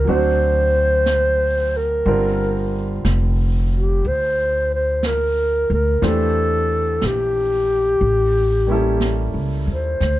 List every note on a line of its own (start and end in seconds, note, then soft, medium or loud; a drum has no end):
0.00 0.11 G4 soft
0.00 0.12 A#4 medium
0.05 2.01 D2 medium
0.05 2.04 F#3 medium
0.05 2.05 C4 soft
0.05 2.06 D4 soft
0.05 brush sweep soft
0.09 2.06 F#4 medium
0.09 1.78 C5 medium
1.06 brush sweep soft
1.06 snare soft
1.06 hi-hat pedal medium
1.77 3.06 A#4 medium
2.05 3.01 G1 medium
2.05 6.03 D3 soft
2.05 6.03 G3 soft
2.05 6.03 C4 soft
2.05 6.03 F4 soft
2.05 6.03 A#4 medium
2.05 brush sweep soft
3.05 4.00 F1 medium
3.05 brush sweep soft
3.05 snare soft
3.05 hi-hat pedal soft
3.74 4.09 G4 medium
4.04 5.66 D2 medium
4.04 4.73 C5 loud
4.04 brush sweep soft
4.75 5.08 C5 medium
5.03 5.72 A#4 medium
5.03 brush sweep soft
5.03 snare soft
5.03 hi-hat pedal soft
5.70 6.00 D2 medium
5.74 6.08 A#4 medium
6.02 6.98 E2 medium
6.02 8.01 E3 soft
6.02 8.01 A3 soft
6.02 8.02 D4 soft
6.02 8.02 G4 soft
6.02 8.02 C5 medium
6.02 brush sweep soft
6.02 snare soft
6.06 7.08 A4 medium
7.02 7.98 A#1 medium
7.02 brush sweep soft
7.02 snare soft
7.02 hi-hat pedal medium
7.06 9.34 G4 medium
8.01 9.30 A1 medium
8.01 brush sweep soft
8.67 10.00 G3 soft
8.67 10.01 A#3 soft
8.67 10.01 C#4 soft
8.67 10.02 E4 soft
8.72 10.03 A4 medium
9.01 brush sweep soft
9.01 snare soft
9.01 hi-hat pedal soft
9.34 9.65 C#2 medium
9.67 9.98 D#2 medium
9.72 10.20 C5 medium
10.01 10.20 D2 medium
10.01 brush sweep soft
10.01 snare soft